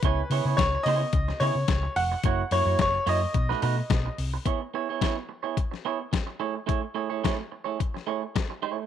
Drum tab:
HH |x-o-x-o-x-o-x-o-|x-o-x-o-x-o-x-o-|x---x---x---x---|x---x---x---x---|
SD |----o----o--o---|----o----o--o---|----o----o--o---|----o----o--o---|
BD |o---o---o---o---|o---o---o---o---|o---o---o---o---|o---o---o---o---|